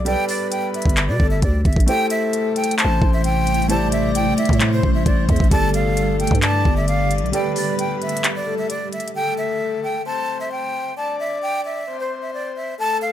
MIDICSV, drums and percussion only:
0, 0, Header, 1, 2, 480
1, 0, Start_track
1, 0, Tempo, 454545
1, 64, Time_signature, 4, 2, 24, 8
1, 13855, End_track
2, 0, Start_track
2, 0, Title_t, "Drums"
2, 65, Note_on_c, 9, 42, 91
2, 170, Note_off_c, 9, 42, 0
2, 303, Note_on_c, 9, 46, 81
2, 408, Note_off_c, 9, 46, 0
2, 545, Note_on_c, 9, 42, 78
2, 651, Note_off_c, 9, 42, 0
2, 785, Note_on_c, 9, 42, 48
2, 864, Note_off_c, 9, 42, 0
2, 864, Note_on_c, 9, 42, 65
2, 903, Note_on_c, 9, 36, 96
2, 944, Note_off_c, 9, 42, 0
2, 944, Note_on_c, 9, 42, 84
2, 1009, Note_off_c, 9, 36, 0
2, 1025, Note_off_c, 9, 42, 0
2, 1025, Note_on_c, 9, 39, 124
2, 1025, Note_on_c, 9, 42, 83
2, 1130, Note_off_c, 9, 39, 0
2, 1130, Note_off_c, 9, 42, 0
2, 1265, Note_on_c, 9, 36, 96
2, 1370, Note_off_c, 9, 36, 0
2, 1504, Note_on_c, 9, 36, 102
2, 1504, Note_on_c, 9, 42, 70
2, 1609, Note_off_c, 9, 36, 0
2, 1609, Note_off_c, 9, 42, 0
2, 1743, Note_on_c, 9, 42, 38
2, 1744, Note_on_c, 9, 36, 97
2, 1823, Note_off_c, 9, 42, 0
2, 1823, Note_on_c, 9, 42, 51
2, 1850, Note_off_c, 9, 36, 0
2, 1863, Note_on_c, 9, 36, 96
2, 1903, Note_off_c, 9, 42, 0
2, 1903, Note_on_c, 9, 42, 61
2, 1969, Note_off_c, 9, 36, 0
2, 1982, Note_off_c, 9, 42, 0
2, 1982, Note_on_c, 9, 42, 96
2, 2088, Note_off_c, 9, 42, 0
2, 2221, Note_on_c, 9, 42, 84
2, 2327, Note_off_c, 9, 42, 0
2, 2463, Note_on_c, 9, 42, 79
2, 2569, Note_off_c, 9, 42, 0
2, 2703, Note_on_c, 9, 42, 68
2, 2784, Note_off_c, 9, 42, 0
2, 2784, Note_on_c, 9, 42, 69
2, 2865, Note_off_c, 9, 42, 0
2, 2865, Note_on_c, 9, 42, 71
2, 2943, Note_off_c, 9, 42, 0
2, 2943, Note_on_c, 9, 39, 118
2, 2943, Note_on_c, 9, 42, 83
2, 3049, Note_off_c, 9, 39, 0
2, 3049, Note_off_c, 9, 42, 0
2, 3185, Note_on_c, 9, 36, 93
2, 3290, Note_off_c, 9, 36, 0
2, 3424, Note_on_c, 9, 42, 69
2, 3529, Note_off_c, 9, 42, 0
2, 3664, Note_on_c, 9, 42, 63
2, 3743, Note_off_c, 9, 42, 0
2, 3743, Note_on_c, 9, 42, 50
2, 3823, Note_off_c, 9, 42, 0
2, 3823, Note_on_c, 9, 42, 37
2, 3903, Note_off_c, 9, 42, 0
2, 3903, Note_on_c, 9, 42, 98
2, 4009, Note_off_c, 9, 42, 0
2, 4141, Note_on_c, 9, 42, 82
2, 4247, Note_off_c, 9, 42, 0
2, 4383, Note_on_c, 9, 42, 80
2, 4489, Note_off_c, 9, 42, 0
2, 4624, Note_on_c, 9, 42, 67
2, 4704, Note_off_c, 9, 42, 0
2, 4704, Note_on_c, 9, 42, 68
2, 4743, Note_on_c, 9, 36, 97
2, 4783, Note_off_c, 9, 42, 0
2, 4783, Note_on_c, 9, 42, 69
2, 4849, Note_off_c, 9, 36, 0
2, 4863, Note_off_c, 9, 42, 0
2, 4863, Note_on_c, 9, 39, 116
2, 4863, Note_on_c, 9, 42, 82
2, 4968, Note_off_c, 9, 39, 0
2, 4968, Note_off_c, 9, 42, 0
2, 5105, Note_on_c, 9, 36, 99
2, 5210, Note_off_c, 9, 36, 0
2, 5343, Note_on_c, 9, 42, 68
2, 5344, Note_on_c, 9, 36, 103
2, 5448, Note_off_c, 9, 42, 0
2, 5449, Note_off_c, 9, 36, 0
2, 5583, Note_on_c, 9, 42, 65
2, 5584, Note_on_c, 9, 36, 95
2, 5663, Note_off_c, 9, 42, 0
2, 5663, Note_on_c, 9, 42, 52
2, 5690, Note_off_c, 9, 36, 0
2, 5704, Note_on_c, 9, 36, 100
2, 5744, Note_off_c, 9, 42, 0
2, 5744, Note_on_c, 9, 42, 36
2, 5809, Note_off_c, 9, 36, 0
2, 5823, Note_off_c, 9, 42, 0
2, 5823, Note_on_c, 9, 42, 93
2, 5824, Note_on_c, 9, 36, 112
2, 5929, Note_off_c, 9, 42, 0
2, 5930, Note_off_c, 9, 36, 0
2, 6062, Note_on_c, 9, 42, 82
2, 6168, Note_off_c, 9, 42, 0
2, 6304, Note_on_c, 9, 42, 80
2, 6410, Note_off_c, 9, 42, 0
2, 6545, Note_on_c, 9, 42, 67
2, 6624, Note_off_c, 9, 42, 0
2, 6624, Note_on_c, 9, 42, 68
2, 6663, Note_on_c, 9, 36, 95
2, 6704, Note_off_c, 9, 42, 0
2, 6704, Note_on_c, 9, 42, 67
2, 6769, Note_off_c, 9, 36, 0
2, 6784, Note_off_c, 9, 42, 0
2, 6784, Note_on_c, 9, 39, 121
2, 6784, Note_on_c, 9, 42, 82
2, 6890, Note_off_c, 9, 39, 0
2, 6890, Note_off_c, 9, 42, 0
2, 7025, Note_on_c, 9, 36, 93
2, 7131, Note_off_c, 9, 36, 0
2, 7264, Note_on_c, 9, 42, 68
2, 7370, Note_off_c, 9, 42, 0
2, 7504, Note_on_c, 9, 42, 65
2, 7585, Note_off_c, 9, 42, 0
2, 7585, Note_on_c, 9, 42, 51
2, 7665, Note_off_c, 9, 42, 0
2, 7665, Note_on_c, 9, 42, 36
2, 7745, Note_off_c, 9, 42, 0
2, 7745, Note_on_c, 9, 42, 94
2, 7850, Note_off_c, 9, 42, 0
2, 7983, Note_on_c, 9, 46, 84
2, 8089, Note_off_c, 9, 46, 0
2, 8224, Note_on_c, 9, 42, 81
2, 8330, Note_off_c, 9, 42, 0
2, 8465, Note_on_c, 9, 42, 50
2, 8544, Note_off_c, 9, 42, 0
2, 8544, Note_on_c, 9, 42, 67
2, 8624, Note_off_c, 9, 42, 0
2, 8624, Note_on_c, 9, 42, 85
2, 8704, Note_off_c, 9, 42, 0
2, 8704, Note_on_c, 9, 39, 119
2, 8704, Note_on_c, 9, 42, 83
2, 8809, Note_off_c, 9, 39, 0
2, 8809, Note_off_c, 9, 42, 0
2, 9185, Note_on_c, 9, 42, 71
2, 9290, Note_off_c, 9, 42, 0
2, 9425, Note_on_c, 9, 42, 39
2, 9504, Note_off_c, 9, 42, 0
2, 9504, Note_on_c, 9, 42, 51
2, 9584, Note_off_c, 9, 42, 0
2, 9584, Note_on_c, 9, 42, 65
2, 9690, Note_off_c, 9, 42, 0
2, 13855, End_track
0, 0, End_of_file